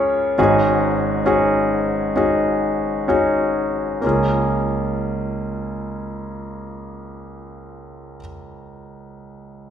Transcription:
Already playing: C#2 C#3 C#4 F4 G#4 A#4 C#5
0.38 G#1 G#2 C#4 D#4 F#4 G#4
1.26 C#4 D#4 F#4 G#4
2.16 C#4 D#4 F#4 G#4
3.08 C#4 D#4 F#4 G#4
4.01 C#2 A#3 C#4 F4
4.07 G#4

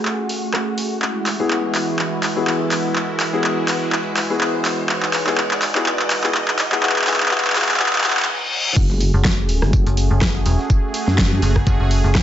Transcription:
Already playing: A3 C#4 F#4 G#4 F#5 G#5, riser
0.05 clap
0.29 open hi-hat
0.54 cross-stick, clap
0.78 open hi-hat
1.02 E3 G#3 E4, clap
1.26 clap, open hi-hat
1.40 B3 E4 F#4 G#4
1.51 B4, clap
1.75 clap, open hi-hat
1.99 clap
2.23 clap, open hi-hat
2.36 B3 E4 F#4 G#4
2.47 clap
2.71 clap, open hi-hat
2.96 clap
3.20 clap, open hi-hat
3.33 B3 E4 F#4 G#4
3.44 clap
3.68 clap, open hi-hat
3.92 clap
4.17 clap, open hi-hat
4.30 B3 E4 F#4 G#4
4.41 clap
4.65 clap, open hi-hat
4.89 D#4, clap
5.03 clap
5.13 clap, open hi-hat
5.27 B3 E4 F#4 G#4, clap
5.38 clap
5.51 clap
5.62 clap, open hi-hat
5.75 B3 E4 F#4 G#4, clap
5.86 clap
5.99 clap
6.10 clap, open hi-hat
6.24 B3 E4 F#4 G#4, clap
6.34 clap
6.48 clap
6.59 clap, open hi-hat
6.72 B3 E4 F#4 G#4, clap
6.83 B3 E4 F#4 G#4, clap
6.89 clap
6.96 clap
7.02 clap
7.07 B3 E4 F#4 G#4, clap, open hi-hat
7.14 clap
7.20 clap
7.26 clap
7.31 B3 E4 F#4 G#4, clap
7.38 clap
7.45 clap
7.50 clap
7.55 B3 E4 F#4 G#4, clap, open hi-hat
7.62 clap
7.69 clap
7.74 clap
7.80 B3 E4 F#4 G#4, clap, reverse cymbal
7.86 clap
7.93 clap
7.98 clap
8.04 B3 E4 F#4 G#4, clap, open hi-hat
8.10 clap
8.17 clap
8.22 clap
8.76 F#1 A3 C#4 F#4 G#4, kick, tambourine, crash
8.90 snare
9.00 open hi-hat, tambourine
9.14 F#1
9.25 kick, snare, tambourine
9.41 A3 F#5
9.49 open hi-hat, tambourine
9.61 F#1 G#5, cross-stick, snare
9.73 kick, tambourine
9.87 F#1, closed hi-hat
9.97 open hi-hat, tambourine
10.11 F#1
10.21 kick, cross-stick, snare, tambourine
10.35 snare
10.46 E1, open hi-hat, tambourine
10.59 snare
10.70 kick, tambourine
10.94 open hi-hat, tambourine
11.07 F#2, snare
11.18 kick, snare, open hi-hat
11.42 F#1, open hi-hat, tambourine
11.56 kick, cross-stick
11.67 F#1, kick, tambourine
11.80 F#1
11.91 open hi-hat, tambourine
12.04 F#1, snare
12.15 kick, cross-stick, snare, tambourine

